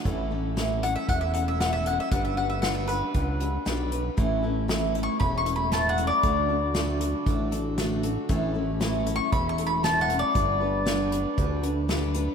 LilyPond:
<<
  \new Staff \with { instrumentName = "Mandolin" } { \time 4/4 \key a \mixolydian \tempo 4 = 117 r4. fis''16 e''16 fis''16 e''16 fis''16 e''16 fis''16 e''16 fis''16 e''16 | fis''16 e''16 fis''16 e''16 fis''16 e''16 b'2 r8 | r4 \tuplet 3/2 { r4 cis'''8 b''8 cis'''8 b''8 a''8 fis''8 d''8~ } | d''4.~ d''16 r2 r16 |
r4 \tuplet 3/2 { r4 cis'''8 b''8 cis'''8 b''8 a''8 fis''8 d''8~ } | d''4.~ d''16 r2 r16 | }
  \new Staff \with { instrumentName = "Steel-string acoustic guitar" } { \time 4/4 \key a \mixolydian <a, e a cis' e' a'>8 <a cis' e' a'>8 <a, e a cis' e' a'>8 <a cis' e' a'>8 <a cis' e' a'>8 <a cis' e' a'>8 <a, e a cis' e' a'>8 <a cis' e' a'>8 | <g d' g' b'>8 <d' g' b'>8 <g d' g' b'>8 <d' g' b'>8 <g d' g' b'>8 <d' g' b'>8 <g d' g' b'>8 <d' g' b'>8 | <a, e a cis' e' a'>8 <a cis' e' a'>8 <a, e a cis' e' a'>8 <a cis' e' a'>8 <a cis' e' a'>8 <a cis' e' a'>8 <a, e a cis' e' a'>8 <a cis' e' a'>8 | <d a d' fis' a'>8 <d' fis' a'>8 <d a d' fis' a'>8 <d' fis' a'>8 <a d' fis' a'>8 <d' fis' a'>8 <d a d' fis' a'>8 <d' fis' a'>8 |
<a, e a cis' e' a'>8 <a cis' e' a'>8 <a, e a cis' e' a'>8 <a cis' e' a'>8 <a cis' e' a'>8 <a cis' e' a'>8 <a, e a cis' e' a'>8 <a cis' e' a'>8 | <g d' g' b'>8 <d' g' b'>8 <g d' g' b'>8 <d' g' b'>8 <g d' g' b'>8 <d' g' b'>8 <g d' g' b'>8 <d' g' b'>8 | }
  \new Staff \with { instrumentName = "Analog synth bass" } { \clef bass \time 4/4 \key a \mixolydian a,,2 e,,2 | g,,2 cis,4 b,,4 | a,,2 e,,2 | d,2 a,,2 |
a,,2 e,,2 | g,,2 d,2 | }
  \new DrumStaff \with { instrumentName = "Drums" } \drummode { \time 4/4 <hh bd>4 <hh sn>8 hh8 <hh bd>8 hh8 <hh sn>8 hh8 | <hh bd>4 <hh sn>8 hh8 <hh bd>8 hh8 <hh sn>8 hh8 | <hh bd>4 <hh sn>8 hh8 <hh bd>8 hh8 <hh sn>8 hh8 | <hh bd>4 <hh sn>8 hh8 <hh bd>8 hh8 <hh sn>8 hh8 |
<hh bd>4 <hh sn>8 hh8 <hh bd>8 hh8 <hh sn>8 hh8 | <hh bd>4 <hh sn>8 hh8 <hh bd>8 hh8 <hh sn>8 hh8 | }
>>